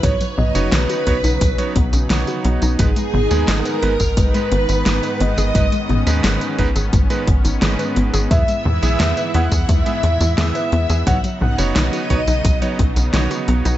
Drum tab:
HH |xx-xxxxxxxxxxxxx|xx-xxxxxxxxxxxxx|xxxxxxxxxxxxxxxx|xx-xxxxxxxxxxxxx|
TB |xx-xxx-xxx-xxx-x|xx-xxx-xxx-xxx-x|xx-xxx-xxx-xxx-x|xx-xxx-xxx-xxx-x|
SD |----o-------o---|----o-------o---|----o-------o---|----o-------o---|
T2 |o-o-------------|o-o-------------|o-o-------------|o-o-------------|
BD |o-----o-o-o-----|o------oo-------|o-----o-o-o-----|o------oo-------|

HH |xx-xxxxxxxxxxxxx|
TB |xx-xxx-xxx-xxx-x|
SD |----o-------o---|
T2 |o-o-------------|
BD |o-----o-o-o-----|